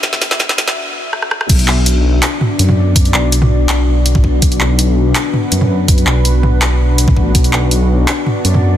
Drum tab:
CC |----------------|x---------------|----------------|----------------|
HH |--x---x---------|xx--x---x---x---|xx--x---x---x---|xx--x---x---x---|
CP |----------------|--x-----x-------|--x-----x-------|--x-----x-------|
SD |oooooooo----rrrr|----------------|----------------|----------------|
T2 |-o--------------|----------o--o--|-----o-------o--|----------o--o--|
BD |o---o-----------|o---------------|o------------oo-|o---------------|

CC |----------------|----------------|
HH |xx--x---x---x---|xx--x---x---x---|
CP |--x-----x-------|--x-----x-------|
SD |----------------|----------------|
T2 |------o------o--|----------o--o--|
BD |o------------oo-|o---------------|